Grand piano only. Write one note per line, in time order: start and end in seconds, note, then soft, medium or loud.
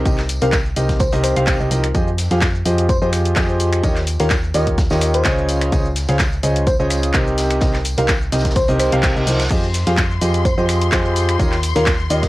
0.05 0.19 C3 medium
0.05 0.19 D#4 medium
0.05 0.19 G4 medium
0.05 0.19 A#4 medium
0.05 0.19 C5 medium
0.05 0.19 D#5 medium
0.42 0.53 C3 medium
0.42 0.53 D#4 medium
0.42 0.53 G4 medium
0.42 0.53 A#4 medium
0.42 0.53 C5 medium
0.42 0.53 F5 medium
0.76 0.97 C3 medium
0.76 0.97 D#4 medium
0.76 0.97 G4 medium
0.76 0.97 A#4 medium
0.76 0.97 C5 medium
0.76 0.96 D#5 medium
1.13 1.34 C3 medium
1.13 1.34 D#4 medium
1.13 1.34 G4 medium
1.13 1.34 A#4 medium
1.13 1.34 C5 medium
1.13 1.34 D#5 medium
1.36 1.57 C3 loud
1.36 1.57 D#4 medium
1.36 1.57 G4 medium
1.36 1.57 A#4 medium
1.36 1.57 C5 medium
1.36 1.57 F5 loud
1.60 1.69 C3 medium
1.60 1.69 D#4 medium
1.60 1.69 G4 medium
1.60 1.69 A#4 medium
1.60 1.69 C5 medium
1.60 1.69 D#5 loud
1.71 1.84 F3 medium
1.71 1.84 D#4 medium
1.71 1.84 G4 medium
1.71 1.84 A#4 medium
1.71 1.84 C5 medium
1.71 1.84 D#5 medium
1.95 2.08 F3 medium
1.95 2.08 F4 medium
1.95 2.08 G4 medium
1.95 2.08 G#4 medium
1.95 2.08 C5 medium
1.95 2.08 D#5 medium
2.31 2.42 F3 medium
2.31 2.42 F4 medium
2.31 2.42 G4 medium
2.31 2.42 G#4 medium
2.31 2.42 C5 medium
2.31 2.42 F5 medium
2.66 2.86 F3 medium
2.66 2.86 F4 medium
2.66 2.86 G4 medium
2.66 2.86 G#4 medium
2.66 2.86 C5 medium
2.66 2.86 D#5 medium
3.02 3.34 F3 medium
3.02 3.34 F4 medium
3.02 3.34 G4 medium
3.02 3.34 G#4 medium
3.02 3.34 C5 medium
3.02 3.34 D#5 medium
3.36 3.81 F3 loud
3.36 3.81 F4 medium
3.36 3.81 G4 medium
3.36 3.81 G#4 medium
3.36 3.81 C5 medium
3.36 3.81 D#5 loud
3.84 3.97 D#3 medium
3.84 3.97 F4 medium
3.84 3.97 G4 medium
3.84 3.97 A#4 medium
3.84 3.97 C#5 medium
3.84 3.97 D#5 loud
4.20 4.31 D#3 medium
4.20 4.31 F4 medium
4.20 4.31 G4 medium
4.20 4.31 A#4 medium
4.20 4.31 C#5 medium
4.20 4.31 F5 medium
4.54 4.74 D#3 medium
4.54 4.74 F4 medium
4.54 4.74 G4 medium
4.54 4.74 A#4 medium
4.54 4.74 C#5 medium
4.54 4.74 D#5 medium
4.91 5.23 D#3 medium
4.91 5.23 F4 medium
4.91 5.23 G4 medium
4.91 5.23 A#4 medium
4.91 5.23 C#5 medium
4.91 5.23 D#5 medium
5.25 5.70 C#3 loud
5.25 5.70 F4 medium
5.25 5.70 G#4 medium
5.25 5.70 C5 medium
5.25 5.70 C#5 medium
5.25 5.70 D#5 loud
5.72 5.86 C#3 medium
5.72 5.86 F4 medium
5.72 5.86 G#4 medium
5.72 5.86 C5 medium
5.72 5.86 C#5 medium
5.72 5.86 D#5 medium
6.09 6.20 C#3 medium
6.09 6.20 F4 medium
6.09 6.20 G#4 medium
6.09 6.20 C5 medium
6.09 6.20 C#5 medium
6.09 6.20 F5 medium
6.43 6.63 C#3 medium
6.43 6.63 F4 medium
6.43 6.63 G#4 medium
6.43 6.63 C5 medium
6.43 6.63 C#5 medium
6.43 6.63 D#5 medium
6.80 7.12 C#3 medium
6.80 7.12 F4 medium
6.80 7.12 G#4 medium
6.80 7.12 C5 medium
6.80 7.12 C#5 medium
6.80 7.12 D#5 loud
7.14 7.59 C3 loud
7.14 7.59 D#4 medium
7.14 7.59 G4 medium
7.14 7.59 A#4 medium
7.14 7.59 C5 medium
7.14 7.59 D#5 loud
7.62 7.75 C3 medium
7.62 7.75 D#4 medium
7.62 7.75 G4 medium
7.62 7.75 A#4 medium
7.62 7.75 C5 medium
7.62 7.75 D#5 medium
7.98 8.09 C3 medium
7.98 8.09 D#4 medium
7.98 8.09 G4 medium
7.98 8.09 A#4 medium
7.98 8.09 C5 medium
7.98 8.09 F5 medium
8.32 8.52 C3 medium
8.32 8.52 D#4 medium
8.32 8.52 G4 medium
8.32 8.52 A#4 medium
8.32 8.52 C5 medium
8.32 8.52 D#5 medium
8.69 8.90 C3 medium
8.69 8.90 D#4 medium
8.69 8.90 G4 medium
8.69 8.90 A#4 medium
8.69 8.90 C5 medium
8.69 8.90 D#5 medium
8.92 9.13 C3 loud
8.92 9.13 D#4 medium
8.92 9.13 G4 medium
8.92 9.13 A#4 medium
8.92 9.13 C5 medium
8.92 9.13 F5 loud
9.16 9.25 C3 medium
9.16 9.25 D#4 medium
9.16 9.25 G4 medium
9.16 9.25 A#4 medium
9.16 9.25 C5 medium
9.16 9.25 D#5 medium
9.27 9.40 F3 medium
9.27 9.40 D#4 medium
9.27 9.40 G4 medium
9.27 9.40 A#4 medium
9.27 9.40 C5 medium
9.27 9.40 D#5 medium
9.51 9.64 F3 medium
9.51 9.64 F4 medium
9.51 9.64 G4 medium
9.51 9.64 G#4 medium
9.51 9.64 C5 medium
9.51 9.64 D#5 medium
9.87 9.98 F3 medium
9.87 9.98 F4 medium
9.87 9.98 G4 medium
9.87 9.98 G#4 medium
9.87 9.98 C5 medium
9.87 9.98 F5 medium
10.21 10.41 F3 medium
10.21 10.41 F4 medium
10.21 10.41 G4 medium
10.21 10.41 G#4 medium
10.21 10.41 C5 medium
10.21 10.41 D#5 medium
10.58 10.90 F3 medium
10.58 10.90 F4 medium
10.58 10.90 G4 medium
10.58 10.90 G#4 medium
10.58 10.90 C5 medium
10.58 10.90 D#5 loud
10.92 11.37 F3 loud
10.92 11.37 F4 medium
10.92 11.37 G4 medium
10.92 11.37 G#4 medium
10.92 11.37 C5 medium
10.92 11.37 D#5 loud
11.39 11.53 D#3 medium
11.39 11.53 F4 medium
11.39 11.53 G4 medium
11.39 11.53 A#4 medium
11.39 11.53 C#5 medium
11.39 11.53 D#5 loud
11.76 11.87 D#3 medium
11.76 11.87 F4 medium
11.76 11.87 G4 medium
11.76 11.87 A#4 medium
11.76 11.87 C#5 medium
11.76 11.87 F5 medium
12.10 12.29 D#3 medium
12.10 12.29 F4 medium
12.10 12.29 G4 medium
12.10 12.29 A#4 medium
12.10 12.29 C#5 medium
12.10 12.29 D#5 medium